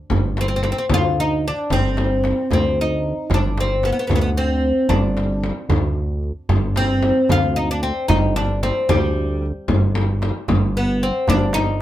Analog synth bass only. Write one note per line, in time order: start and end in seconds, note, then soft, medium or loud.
0.11 0.74 G1 medium
0.89 1.53 D2 medium
1.70 2.33 G1 medium
2.51 3.14 D2 medium
3.30 3.93 G1 medium
4.10 4.73 D2 medium
4.89 5.52 G1 medium
5.69 6.32 D2 medium
6.49 7.12 G1 medium
7.29 7.92 D2 medium
8.09 8.72 G1 medium
8.90 9.52 D2 medium
9.69 10.32 G1 loud
10.49 11.12 G1 loud
11.28 11.82 G1 medium